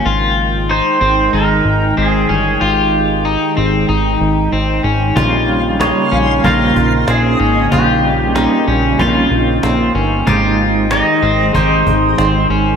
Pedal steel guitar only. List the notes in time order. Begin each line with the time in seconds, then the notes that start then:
0.71 C5
1.35 A#4
1.98 G#4
2.61 G4
5.81 C#5
6.45 A#4
7.10 G#4
7.74 G4
9.15 F4
10.92 D#5
11.55 C5